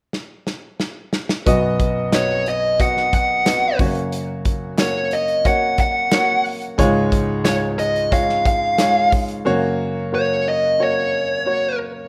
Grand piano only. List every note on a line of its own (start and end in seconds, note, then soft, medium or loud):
1.46 3.76 B1 medium
1.46 3.76 F#2 medium
1.46 1.95 B3 loud
1.46 1.96 F#4 loud
1.46 1.96 D#5 loud
2.13 2.62 B3 medium
2.13 2.62 F#4 medium
2.13 2.63 D#5 medium
2.79 3.29 B3 medium
2.79 3.29 F#4 medium
2.79 3.29 D#5 medium
3.45 3.79 B3 medium
3.45 3.79 F#4 medium
3.45 3.80 D#5 medium
3.79 6.42 F#2 medium
3.79 6.42 C#3 medium
3.79 4.59 A#3 medium
3.79 4.60 F#4 medium
3.79 4.60 C#5 medium
4.79 5.28 A#3 medium
4.79 5.29 F#4 medium
4.79 5.29 C#5 medium
5.45 5.95 A#3 medium
5.45 5.95 F#4 medium
5.45 5.95 C#5 medium
6.12 6.62 A#3 medium
6.12 6.62 F#4 medium
6.12 6.62 C#5 medium
6.78 9.42 C#2 medium
6.78 9.41 G#2 medium
6.78 7.28 G#3 loud
6.78 7.28 F4 loud
6.78 7.29 C#5 loud
7.45 7.95 G#3 medium
7.45 7.95 F4 medium
7.45 7.95 C#5 medium
8.11 8.61 G#3 medium
8.11 8.62 F4 medium
8.11 8.62 C#5 medium
8.79 9.28 G#3 medium
8.79 9.29 F4 medium
8.79 9.29 C#5 medium
9.45 12.08 F#2 medium
9.45 12.08 C#3 medium
9.45 9.95 A#3 loud
9.45 9.95 F#4 medium
9.45 9.96 C#5 loud
10.12 10.62 A#3 medium
10.12 10.62 F#4 medium
10.12 10.62 C#5 medium
10.79 11.28 A#3 medium
10.79 11.29 F#4 medium
10.79 11.29 C#5 medium
11.46 11.95 A#3 medium
11.46 11.96 F#4 medium
11.46 11.96 C#5 medium